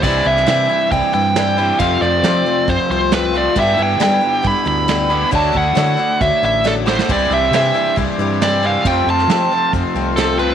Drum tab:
CC |x---------------|----------------|----------------|----------------|
HH |----x---x---x---|x---x---x---x---|x---x---x---x---|x---x---x-------|
SD |---oo-------o---|----o-------o---|----o-------o---|----o-------o-oo|
BD |o-------o-------|o-------o-------|o-------o-------|o-o-----o-------|

CC |----------------|----------------|
HH |x---x---x---x---|x---x---x---x---|
SD |----o-------o---|---oo-------o---|
BD |o-------o-------|o-------o-------|